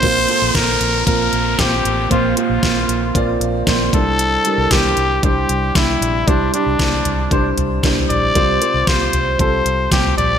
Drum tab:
HH |x-x-x-x-x-x-x-x-|x-x-x-x-x-x-x-x-|x-x-x-x-x-x-x-x-|x-x-x-x-x-x-x-x-|
SD |----o-------o---|----o-------o---|----o-------o---|----o-------o---|
FT |----------------|----------------|----------------|------o---o--oo-|
BD |o---o---o---o---|o---o---o---o-o-|----o---o---o---|o---o---o---o---|

HH |x-x-x-x-x-x-x-x-|
SD |----o-------o---|
FT |------o------oo-|
BD |o---o---o---o---|